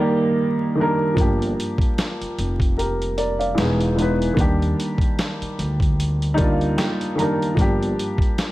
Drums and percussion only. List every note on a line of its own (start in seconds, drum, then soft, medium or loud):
1.17 kick loud
1.17 closed hi-hat medium
1.42 closed hi-hat soft
1.60 closed hi-hat medium
1.78 kick medium
1.78 closed hi-hat soft
1.98 snare loud
1.98 closed hi-hat medium
2.21 closed hi-hat soft
2.38 closed hi-hat medium
2.60 kick medium
2.60 closed hi-hat soft
2.79 closed hi-hat medium
3.02 closed hi-hat soft
3.18 closed hi-hat medium
3.41 closed hi-hat soft
3.58 snare loud
3.58 closed hi-hat medium
3.80 closed hi-hat soft
3.99 closed hi-hat medium
4.22 closed hi-hat soft
4.37 kick loud
4.37 closed hi-hat medium
4.62 closed hi-hat soft
4.80 closed hi-hat medium
4.98 kick medium
4.98 closed hi-hat soft
5.19 snare loud
5.19 closed hi-hat medium
5.42 closed hi-hat soft
5.59 closed hi-hat medium
5.80 kick medium
5.80 closed hi-hat soft
6.00 closed hi-hat medium
6.22 closed hi-hat soft
6.38 kick medium
6.38 closed hi-hat medium
6.61 closed hi-hat soft
6.78 snare loud
6.78 closed hi-hat medium
7.01 closed hi-hat soft
7.19 closed hi-hat medium
7.42 closed hi-hat soft
7.57 kick loud
7.57 closed hi-hat medium
7.83 closed hi-hat soft
7.99 closed hi-hat medium
8.18 kick medium
8.18 closed hi-hat soft
8.38 snare loud
8.38 closed hi-hat medium